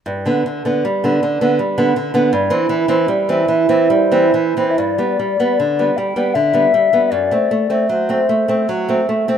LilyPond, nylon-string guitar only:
\new Staff \with { instrumentName = "Nylon-string guitar" } { \clef bass \time 3/4 \key g \major \tempo 4 = 77 g,16 <d b>16 r16 <d b>16 g16 <d b>16 d16 <d b>16 g16 <d b>16 d16 <d b>16 | g,16 <e c'>16 e16 <e c'>16 g16 <e c'>16 e16 <e c'>16 g16 <e c'>16 e16 <e c'>16 | g,16 <g b>16 g16 <g b>16 d16 <g b>16 g16 <g b>16 d16 <g b>16 g16 <g b>16 | fis,16 <a c'>16 a16 <a c'>16 fis16 <a c'>16 a16 <a c'>16 fis16 <a c'>16 a16 <a c'>16 | }